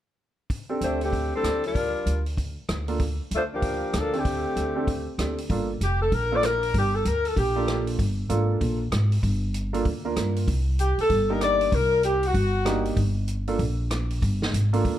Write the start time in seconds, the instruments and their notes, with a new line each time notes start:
0.50 kick, open hi-hat
0.69 grand piano C4 D4 G4 A4
0.81 upright bass D2, saxophone section A3 D4 G4 C5, closed hi-hat
1.01 saxophone section D3 A3 C4 G4, open hi-hat
1.13 kick, open hi-hat
1.34 saxophone section G3 C4 D4 A4
1.43 upright bass D2, cross-stick, closed hi-hat
1.64 saxophone section G3 D4 F4 A#4, open hi-hat
1.75 kick, open hi-hat
2.06 upright bass D2, closed hi-hat
2.26 open hi-hat
2.37 kick, open hi-hat
2.69 upright bass D2, cross-stick, closed hi-hat
2.88 grand piano A#3 D4 F4 A4, open hi-hat
3.00 kick, open hi-hat
3.31 upright bass D2, saxophone section A3 D4 F4 C5, closed hi-hat
3.54 saxophone section F3 A#3 D4 G4
3.62 kick, open hi-hat
3.94 upright bass D2, saxophone section F3 A#3 D4 A4, cross-stick, closed hi-hat
4.13 saxophone section D3 A3 C4 G4, grand piano C4 D4 G4 A4, open hi-hat
4.25 kick, open hi-hat
4.56 upright bass D2, closed hi-hat
4.76 grand piano C4 D4 G4 A4
4.87 kick, open hi-hat
5.18 upright bass D2, grand piano C4 D4 G4 A4, cross-stick, closed hi-hat
5.38 open hi-hat
5.49 upright bass G1, grand piano A#3 D4 F4 A4, kick, open hi-hat
5.81 upright bass F1, saxophone section G4, closed hi-hat
6.01 saxophone section A4
6.12 upright bass A#1, saxophone section A#4, kick, open hi-hat
6.32 grand piano A#3 D4 F4 A4, saxophone section D5
6.43 saxophone section A#4, cross-stick, closed hi-hat
6.63 open hi-hat
6.74 upright bass G1, saxophone section G4, kick, open hi-hat
6.95 saxophone section A4
7.05 upright bass D2, saxophone section A#4, closed hi-hat
7.25 saxophone section A4, open hi-hat
7.36 upright bass A#1, saxophone section G4, kick, open hi-hat
7.56 grand piano A#3 D4 F4 A4
7.68 cross-stick, closed hi-hat
7.87 open hi-hat
7.99 upright bass G1, kick, open hi-hat
8.29 upright bass G#1, grand piano A#3 D4 F4 A4, closed hi-hat
8.61 upright bass A#1, kick, open hi-hat
8.92 upright bass G#1, cross-stick, closed hi-hat
9.12 open hi-hat
9.23 upright bass G1, kick, open hi-hat
9.54 closed hi-hat
9.73 grand piano A#3 D4 F4 A4, open hi-hat
9.85 upright bass D2, kick, open hi-hat
10.05 grand piano A#3 D4 F4 A#4
10.16 upright bass G2, cross-stick, closed hi-hat
10.36 open hi-hat
10.48 upright bass C2, kick, open hi-hat
10.79 saxophone section G4, closed hi-hat
10.98 saxophone section A4, muted upright bass stroke, open hi-hat
11.10 upright bass G1, kick, open hi-hat
11.30 grand piano A#3 D4 D#4 G4, saxophone section A#4
11.41 saxophone section D5, cross-stick, closed hi-hat
11.61 open hi-hat
11.72 upright bass C2, saxophone section A#4, kick, open hi-hat
12.03 saxophone section G4, closed hi-hat
12.23 saxophone section F#4, open hi-hat
12.34 upright bass G1, kick, open hi-hat
12.65 grand piano A#3 D4 D#4 G4, cross-stick, closed hi-hat
12.85 open hi-hat
12.97 upright bass G1, kick, open hi-hat
13.28 closed hi-hat
13.47 grand piano A#3 D4 F4 A4, open hi-hat
13.59 upright bass A#1, kick, open hi-hat
13.91 cross-stick, closed hi-hat
14.10 open hi-hat
14.22 upright bass G1, kick, open hi-hat
14.42 snare
14.54 upright bass G#1, closed hi-hat
14.73 grand piano A#3 D4 F4 A4, open hi-hat
14.85 upright bass D2, kick, open hi-hat